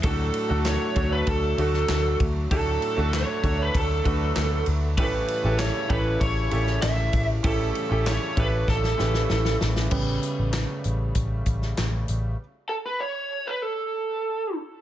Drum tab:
CC |----------------|----------------|----------------|----------------|
RD |x-x-x-x-x-x-x-x-|x-x-x-x-x-x-x-x-|x-x-x-x-x-x-x-x-|x-x-x-x---------|
HH |p---------------|----------------|----------------|----------------|
CP |----x-------x---|----x-------x---|----x-------x---|----x-----------|
SD |----o------oo---|----o-------o---|----o------oo---|----o---oooooooo|
BD |o-----o-o-----o-|o-----o-o-o-----|o-----o-o-----o-|o-----o-o-------|

CC |x---------------|----------------|
RD |----------------|----------------|
HH |--x-x-x-x-x-x-x-|----------------|
CP |----x-------x---|----------------|
SD |----o------oo---|----------------|
BD |o-------o-o-----|----------------|